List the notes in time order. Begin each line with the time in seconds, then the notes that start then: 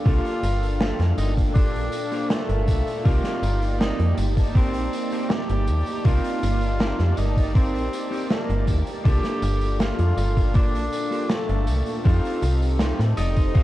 Already playing: A#3 D4 F4 F5 G5
0.04 C2 A#3 D4 F4 G4 A4, kick, closed hi-hat, tambourine
0.25 closed hi-hat
0.43 G1, closed hi-hat, tambourine
0.63 closed hi-hat, tambourine
0.80 A#3 F4 G4 A4, snare, closed hi-hat, tambourine
0.99 F2, snare, closed hi-hat
1.18 G1 D#4, muted clean electric guitar stroke, closed hi-hat, tambourine
1.35 A#2 D4 F4, kick, closed hi-hat, tambourine
1.54 A#3 D4 F4 G4 A4, kick, closed hi-hat, tambourine
1.74 A#1, closed hi-hat
1.92 closed hi-hat, tambourine
2.12 A#3 F4 G4 C5, closed hi-hat, tambourine
2.30 A3, snare, closed hi-hat, tambourine
2.49 G1, closed hi-hat
2.67 C2, muted clean electric guitar stroke, kick, closed hi-hat, tambourine
2.87 closed hi-hat, tambourine
3.03 C2 A#3 C4 D#4 F4 G4 A#4 D5 C6, kick, closed hi-hat, tambourine
3.24 snare, closed hi-hat
3.43 G1, closed hi-hat, tambourine
3.62 closed hi-hat, tambourine
3.80 C4 D#4 G4 A4, snare, closed hi-hat, tambourine
3.99 F2, closed hi-hat
4.17 G1, muted clean electric guitar stroke, closed hi-hat, tambourine
4.35 A#3 D#4 D5 A5, kick, closed hi-hat, tambourine
4.55 C4 D#4 G4 A#4, kick, closed hi-hat, tambourine
4.74 A#1, closed hi-hat
4.93 closed hi-hat, tambourine
5.11 C4 D#4 G4 A#4, closed hi-hat, tambourine
5.30 G4, snare, closed hi-hat, tambourine
5.49 G1, closed hi-hat
5.67 D#2, muted clean electric guitar stroke, closed hi-hat, tambourine
5.86 closed hi-hat, tambourine
6.03 C2 A#3 C4 D#4 F4 G4 A#4 D5 D6, kick, closed hi-hat, tambourine
6.24 closed hi-hat
6.43 G1, closed hi-hat, tambourine
6.61 closed hi-hat, tambourine
6.80 C4 D#4 G4 A#4, snare, closed hi-hat, tambourine
6.99 F2, snare, closed hi-hat
7.17 G1 D#4, muted clean electric guitar stroke, closed hi-hat, tambourine
7.35 A#3 D#4 D5 A5, kick, closed hi-hat, tambourine
7.54 C4 D#4 G4 A#4, kick, closed hi-hat, tambourine
7.75 A#1, closed hi-hat
7.93 closed hi-hat, tambourine
8.11 C4 D#4 G4 A#4, closed hi-hat, tambourine
8.30 A#3, snare, closed hi-hat, tambourine
8.49 G1, closed hi-hat
8.67 D#2, muted clean electric guitar stroke, kick, closed hi-hat, tambourine
8.87 closed hi-hat, tambourine
9.03 C2 A#3 D4 F4 G4 A4 F5 G5, kick, closed hi-hat, tambourine
9.24 snare, closed hi-hat
9.42 G1, closed hi-hat, tambourine
9.61 closed hi-hat, tambourine
9.79 A#3 F4 G4 A4, snare, closed hi-hat, tambourine
9.99 F2, closed hi-hat
10.17 G1, muted clean electric guitar stroke, closed hi-hat, tambourine
10.35 A#2 D4 F4, kick, closed hi-hat, tambourine
10.53 A#3 D4 F4 G4 A4, kick, closed hi-hat, tambourine
10.74 A#1, closed hi-hat
10.93 closed hi-hat, tambourine
11.11 A#3 F4 G4 A4, closed hi-hat, tambourine
11.29 A3, snare, closed hi-hat, tambourine
11.49 G1, closed hi-hat
11.67 C2, muted clean electric guitar stroke, closed hi-hat, tambourine
11.86 closed hi-hat, tambourine
12.03 F2 C4 D#4 F4 G4 A4 C6, kick, closed hi-hat, tambourine
12.25 closed hi-hat
12.42 C2, closed hi-hat, tambourine
12.62 closed hi-hat, tambourine
12.79 C4 D#4 F4 G4, snare, closed hi-hat, tambourine
12.99 A2, snare, closed hi-hat
13.17 F1 D#4 D5, muted clean electric guitar stroke, closed hi-hat, tambourine
13.35 C4 D#4 G4 C5 D#5, kick, closed hi-hat, tambourine
13.54 C4 D#4 F4 A4 F5, kick, closed hi-hat, tambourine